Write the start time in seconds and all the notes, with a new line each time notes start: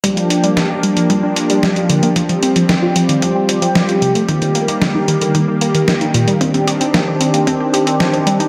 0.04 F3 G3 A#3 D4 G4, kick, closed hi-hat
0.17 G3, closed hi-hat
0.30 D4, closed hi-hat
0.44 G3, closed hi-hat
0.57 F3, kick, snare, closed hi-hat
0.70 G4
0.83 G3, closed hi-hat
0.97 F3, closed hi-hat
1.10 G3, kick, closed hi-hat
1.23 D4
1.36 D4, closed hi-hat
1.50 G3, closed hi-hat
1.63 G3, kick, snare, closed hi-hat
1.76 G4, closed hi-hat
1.90 D3, closed hi-hat
2.03 A#3, closed hi-hat
2.16 F3 G3 C4, kick, closed hi-hat
2.29 F3, closed hi-hat
2.43 C4, closed hi-hat
2.56 F3, closed hi-hat
2.69 D#3, kick, snare, closed hi-hat
2.83 F4
2.96 F3, closed hi-hat
3.09 D#3, closed hi-hat
3.22 F3, kick, closed hi-hat
3.36 C4
3.49 C4, closed hi-hat
3.62 F3, closed hi-hat
3.75 F3, kick, snare, closed hi-hat
3.89 F4, closed hi-hat
4.02 C3, closed hi-hat
4.15 A3, closed hi-hat
4.29 D#3 A#3, kick, closed hi-hat
4.42 D#3, closed hi-hat
4.55 A#3, closed hi-hat
4.68 D#3, closed hi-hat
4.82 D3, kick, snare, closed hi-hat
4.95 D#4
5.08 D#3, closed hi-hat
5.21 D3, closed hi-hat
5.35 D#3, kick, closed hi-hat
5.48 A#3
5.61 A#3, closed hi-hat
5.75 D#3, closed hi-hat
5.88 D#3, kick, snare, closed hi-hat
6.01 D#4, closed hi-hat
6.14 A#2, closed hi-hat
6.28 G3, closed hi-hat
6.41 C4 D4, kick, closed hi-hat
6.54 C4, closed hi-hat
6.67 G4, closed hi-hat
6.81 C4, closed hi-hat
6.94 A#3, kick, snare, closed hi-hat
7.07 C5
7.21 C4, closed hi-hat
7.34 A#3, closed hi-hat
7.47 C4, kick, closed hi-hat
7.60 G4
7.74 G4, closed hi-hat
7.87 C4, closed hi-hat
8.00 C4, kick, snare, closed hi-hat
8.13 C5, closed hi-hat
8.27 G3, closed hi-hat
8.40 D#4, closed hi-hat